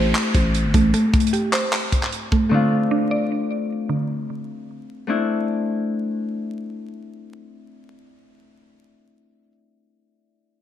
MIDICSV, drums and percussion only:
0, 0, Header, 1, 2, 480
1, 0, Start_track
1, 0, Key_signature, -1, "minor"
1, 0, Tempo, 394737
1, 1141, Time_signature, 4, 2, 24, 8
1, 12911, End_track
2, 0, Start_track
2, 0, Title_t, "Drums"
2, 181, Note_on_c, 9, 39, 116
2, 183, Note_on_c, 9, 42, 69
2, 302, Note_off_c, 9, 39, 0
2, 305, Note_off_c, 9, 42, 0
2, 420, Note_on_c, 9, 36, 86
2, 422, Note_on_c, 9, 42, 75
2, 541, Note_off_c, 9, 36, 0
2, 543, Note_off_c, 9, 42, 0
2, 663, Note_on_c, 9, 42, 78
2, 785, Note_off_c, 9, 42, 0
2, 901, Note_on_c, 9, 36, 92
2, 902, Note_on_c, 9, 42, 80
2, 1022, Note_off_c, 9, 36, 0
2, 1023, Note_off_c, 9, 42, 0
2, 1140, Note_on_c, 9, 42, 87
2, 1262, Note_off_c, 9, 42, 0
2, 1380, Note_on_c, 9, 36, 101
2, 1380, Note_on_c, 9, 42, 48
2, 1461, Note_off_c, 9, 42, 0
2, 1461, Note_on_c, 9, 42, 66
2, 1502, Note_off_c, 9, 36, 0
2, 1541, Note_off_c, 9, 42, 0
2, 1541, Note_on_c, 9, 42, 74
2, 1622, Note_off_c, 9, 42, 0
2, 1622, Note_on_c, 9, 42, 72
2, 1744, Note_off_c, 9, 42, 0
2, 1860, Note_on_c, 9, 39, 94
2, 1860, Note_on_c, 9, 42, 85
2, 1982, Note_off_c, 9, 39, 0
2, 1982, Note_off_c, 9, 42, 0
2, 2101, Note_on_c, 9, 39, 113
2, 2103, Note_on_c, 9, 42, 73
2, 2222, Note_off_c, 9, 39, 0
2, 2225, Note_off_c, 9, 42, 0
2, 2340, Note_on_c, 9, 36, 82
2, 2342, Note_on_c, 9, 42, 77
2, 2462, Note_off_c, 9, 36, 0
2, 2463, Note_off_c, 9, 42, 0
2, 2469, Note_on_c, 9, 39, 65
2, 2584, Note_on_c, 9, 42, 73
2, 2590, Note_off_c, 9, 39, 0
2, 2705, Note_off_c, 9, 42, 0
2, 2821, Note_on_c, 9, 36, 95
2, 2943, Note_off_c, 9, 36, 0
2, 12911, End_track
0, 0, End_of_file